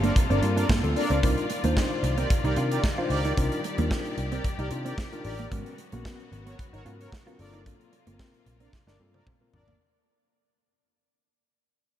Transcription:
Already playing: C3 G3 F4 A4
0.03 A#3 D4 A#4 D5, closed hi-hat
0.16 kick, closed hi-hat
0.30 G1 C4 D4 A#4 D5, closed hi-hat
0.42 G2 A#3 C4 F4 A#4, muted clean electric guitar stroke, closed hi-hat
0.57 D4 A#4 D5, closed hi-hat
0.69 G2 A#3, kick, snare
0.83 D2 A#3 C4 F4 A4, muted clean electric guitar stroke, closed hi-hat
0.96 D4 A#4 D5, open hi-hat
1.10 C#2 C4, closed hi-hat
1.23 C2 D#3 C4 D4 D#4 F4 A#4 D5, kick, closed hi-hat
1.38 closed hi-hat
1.50 muted clean electric guitar stroke, closed hi-hat
1.64 D#2 A#3 D4 D#4 F4 C5, closed hi-hat
1.77 C4, kick, snare
2.03 C2, muted clean electric guitar stroke, closed hi-hat
2.17 C4 G4 A#4 D5, closed hi-hat
2.30 muted clean electric guitar stroke, kick, closed hi-hat
2.44 C2 D#4 G4 A#4 D5, closed hi-hat
2.56 C3 D4 D#4 F4 A#4, closed hi-hat
2.71 G4 A#4 D5, closed hi-hat
2.84 kick, snare
2.98 D4 D#4 F4 C5
3.10 C#2 G4 A#4 D5, muted clean electric guitar stroke, open hi-hat
3.25 D#4, closed hi-hat
3.37 C2 C4 D4 D#4 F4 G4 A#4, kick, closed hi-hat
3.52 closed hi-hat
3.64 muted clean electric guitar stroke, closed hi-hat
3.78 D#2 A#3 D4 D#4 F4 A#4, closed hi-hat
3.91 C4, kick, snare
4.05 closed hi-hat
4.18 C2, muted clean electric guitar stroke, closed hi-hat
4.32 C4 G4 A#4 D5, closed hi-hat
4.44 kick, closed hi-hat
4.59 C2 D#4 G4 A#4 D5, closed hi-hat
4.71 C3 D4 D#4 F4 G4, muted clean electric guitar stroke, closed hi-hat
4.85 C4 G4 A#4 D5, closed hi-hat
4.98 C4, kick, snare
5.12 D4 D#4 F4 A#4, muted clean electric guitar stroke, closed hi-hat
5.24 A1 G4 A#4 D5, open hi-hat
5.39 A#3, closed hi-hat
5.51 G#1 C#3 F#3 G#3 B3 C#4 F#4 A#4, kick, closed hi-hat
5.66 closed hi-hat
5.78 muted clean electric guitar stroke, closed hi-hat
5.92 A#1 A#3 B3 C#4 F#4 A#4, closed hi-hat
6.05 B3, kick, snare
6.20 closed hi-hat
6.32 G#1, muted clean electric guitar stroke, closed hi-hat
6.46 B3 F#4 A#4 C#5, closed hi-hat
6.59 muted clean electric guitar stroke, kick, closed hi-hat
6.73 G#1 D#4 F#4 A#4 C#5, closed hi-hat
6.85 G#2 B3 C#4 F4 F#4 A#4, closed hi-hat
7.00 F#4 A#4 C#5, closed hi-hat
7.12 kick, snare
7.26 B3 C#4 F4 F#4 A#4, closed hi-hat
7.39 G1 C3 A#3 C4 D4 F4 A4 A#4 D5, muted clean electric guitar stroke, open hi-hat
7.53 D#4, closed hi-hat
7.66 D4, kick, closed hi-hat
7.81 closed hi-hat
7.93 muted clean electric guitar stroke, closed hi-hat
8.07 G1 A#3 C4 F4 A4, closed hi-hat
8.14 A#4
8.19 C4, kick, snare
8.34 closed hi-hat
8.46 A#1, muted clean electric guitar stroke, closed hi-hat
8.60 C4 D4 A#4 D5, closed hi-hat
8.73 kick, snare
8.87 G1 D4 A#4 D5, snare
9.00 G2 A#3 C4 F4 A4, muted clean electric guitar stroke
9.14 C4 D4 A#4 D5, high tom
9.27 C4, kick, mid tom
9.41 A#3 C4 F4 A#4, muted clean electric guitar stroke
9.53 G#1 D4 A#4 D5, floor tom
9.68 A#3, floor tom

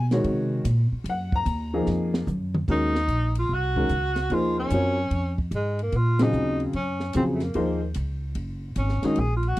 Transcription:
Already playing: B2
0.11 D#3 G#3 F#4 C#5, snare, ride
0.24 C3, ride
0.65 A#2, hi-hat pedal, ride
0.92 muted upright bass stroke
1.04 F#2, ride
1.09 F#5
1.32 A#5, kick
1.45 D#2, hi-hat pedal, ride
1.73 F3 A#3 D#4 G#4
1.86 F2, snare
2.14 snare
2.27 F#2, hi-hat pedal, mid tom
2.54 mid tom
2.68 D#2 D#3 G#3 C#4 D#4 F#4 A#4, kick, crash
2.95 snare
3.08 A#1, hi-hat pedal, ride
3.35 ride
3.39 F4
3.49 C2
3.54 F#4
3.76 D#3 G#3 C#4 F#4 A#4, kick
3.89 C#2, hi-hat pedal, ride
4.16 snare, ride
4.30 D#2 F3 A#3 D#4 F4 G#4 C5, ride
4.59 C#4
4.70 F#2 F#3 C4 F4 A#4 C#5, hi-hat pedal, ride
5.10 F2, ride
5.38 kick
5.51 G#2, hi-hat pedal, ride
5.55 G#3
5.79 ride
5.83 A#3
5.92 A#2, ride
5.97 F4
6.19 C#3 F#3 C4 D#4 F4 G#4, snare, ride
6.33 D#2, hi-hat pedal
6.60 ride
6.73 F#2 C#4, ride
7.00 snare
7.13 F2 C#3 F#3 C4 F4 G#4, hi-hat pedal, ride
7.35 A3
7.40 A#3, snare, ride
7.54 D#2 F3 A#3 D#4 G#4 C5, ride
7.94 C#2, hi-hat pedal, ride
8.35 F#1, ride
8.76 G#1 C#4, hi-hat pedal, ride
8.89 snare
9.02 D#3 G#3 C#4 D#4 F#4 G#4, muted upright bass stroke, snare, ride
9.16 A#1 G#4, ride
9.37 F4
9.43 ride
9.48 F#4
9.57 hi-hat pedal, ride

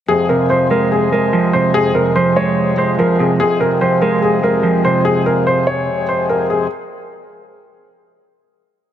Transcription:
0.08 F2 C3 G#3 G#4
0.29 C3 A#4
0.50 F3 C5
0.71 G#3 A#4
0.92 G#4
1.12 G#3 A#4
1.33 F3
1.53 C3 C5
1.74 F2 G#4
1.95 C3 A#4
2.16 F3 C5
2.36 G#3 C#5
2.77 G#3 C5
2.99 F3 A#4
3.19 C3 G#4
3.40 F2 C3 G#3 G#4
3.60 C3 A#4
3.81 F3 C5
4.01 G#3 A#4
4.22 G#4
4.43 G#3 A#4
4.63 F3
4.85 C3 C5
5.05 G#4
5.26 A#4
5.47 C5
5.67 C#5
6.09 C5
6.29 A#4
6.50 G#4

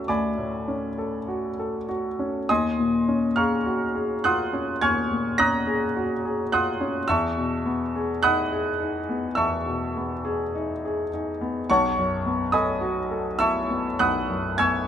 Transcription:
Already playing: A2 C#4 F#4 A4 E5 A5 C#6 E6
0.08 D2 D5 G#5 B5 D6
0.38 A2
0.68 C#4
0.98 A4
1.28 F#4
1.59 A4
1.89 F#4
2.19 C#4
2.49 D#2 D#5 G#5 C6 D#6
2.79 A#2
3.08 C#4
3.36 G#4 F5 A#5 C#6 F6
3.66 F#4
3.96 G#4
4.24 F4 F#5 C6 D#6 F#6
4.53 C#4
4.81 D#2 G#5 C#6 F6 G#6
5.12 A#2
5.38 C#4 A#5 D#6 F#6 A#6
5.67 G#4
5.96 F#4
6.25 G#4
6.52 F4 F#5 C6 D#6 F#6
6.80 C#4
7.08 E2 E5 A5 C#6 E6
7.37 B2
7.66 B3
7.95 G#4
8.23 D#4 F#5 B5 D#6 F#6
8.52 G#4
8.80 D#4
9.09 B3
9.35 E2 E5 A5 C#6 E6
9.66 B2
9.97 B3
10.25 G#4
10.55 D#4
10.85 G#4
11.14 D#4
11.41 B3
11.70 B1 C#5 F#5 A5 C#6
11.98 F#2
12.26 B3
12.52 A4 D#5 G#5 B5 D#6
12.81 F#4
13.11 A4
13.39 E4 E5 A5 C#6 E6
13.70 B3
13.99 B1 F#5 B5 D#6 F#6
14.29 F#2
14.58 B3 G#5 C#6 E6 G#6

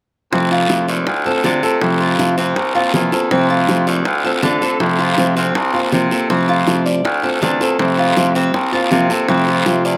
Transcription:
0.32 F2 C3 F3 A3 C4 F4, high bongo, long guiro
0.51 F4, high bongo
0.69 C3 F3 A3 C4 F4, high bongo, short guiro
0.88 D#2 D5, high bongo, short guiro
1.07 D2, muted nylon-string guitar stroke, high bongo, long guiro
1.25 A3 C4 F4 A4
1.35 D2
1.44 C3 D3 A3 C4 D4 F4, high bongo, low bongo, short guiro
1.63 A3 C4 F4 A4, high bongo, short guiro
1.81 F2 C3 F3 A3 C4 F4, high bongo, long guiro
2.00 F4, high bongo
2.18 C3 F3 A3 C4 F4, high bongo, short guiro
2.38 F2 C4, high bongo, short guiro
2.56 C2, muted nylon-string guitar stroke, high bongo, long guiro
2.75 A#3 C4 F4
2.84 C2
2.94 E2 C3 F3 A#3 C4 F4, high bongo, low bongo, short guiro
3.12 A#3 C4 F4 A4, high bongo, short guiro
3.31 F2 C3 F3 A3 C4 F4, high bongo, long guiro
3.50 F4, high bongo
3.68 C3 F3 A3 C4 F4, high bongo, short guiro
3.87 D#2 D5, high bongo, short guiro
4.05 D2, muted nylon-string guitar stroke, high bongo, long guiro
4.24 A3 C4 F4 A4
4.34 D2
4.42 D3 A3 C4 D4 F4, high bongo, low bongo, short guiro
4.61 A3 C4 F4 A4, high bongo, short guiro
4.79 F2 C3 F3 A3 C4 F4, high bongo, long guiro
4.99 F4, high bongo
5.17 C3 F3 A3 C4 F4, high bongo, short guiro
5.36 D2 C4, high bongo, short guiro
5.54 C2, muted nylon-string guitar stroke, high bongo, long guiro
5.73 A#3 C4 F4
5.83 C2
5.92 C3 F3 A#3 C4 F4, high bongo, low bongo, short guiro
6.11 A#3 C4 F4 A4, high bongo, short guiro
6.29 F2 C3 F3 A3 C4 F4, high bongo, long guiro
6.49 F4, high bongo
6.66 C3 F3 A3 C4 F4, high bongo, short guiro
6.86 D5, high bongo, short guiro
7.04 D2, muted nylon-string guitar stroke, high bongo, long guiro
7.23 A3 C4 F4 A4
7.32 D2
7.41 E2 D3 A3 C4 D4 F4, high bongo, low bongo, short guiro
7.60 A3 C4 F4 A4, high bongo, short guiro
7.79 F2 C3 F3 A3 C4 F4, high bongo, long guiro
7.98 F4, high bongo
8.16 C3 F3 A3 C4 F4, high bongo, short guiro
8.35 F2 C4, high bongo, short guiro
8.54 C2, muted nylon-string guitar stroke, high bongo, long guiro
8.72 A#3 C4 F4
8.82 C2
8.90 C3 F3 A#3 C4 F4, high bongo, low bongo, short guiro
9.09 A#3 C4 F4 A4, high bongo, short guiro
9.28 F2 C3 F3 A3 C4 F4, high bongo, long guiro
9.47 F4, high bongo
9.66 C3 F3 A3 C4 F4, high bongo, short guiro
9.85 E2 D5, high bongo, short guiro

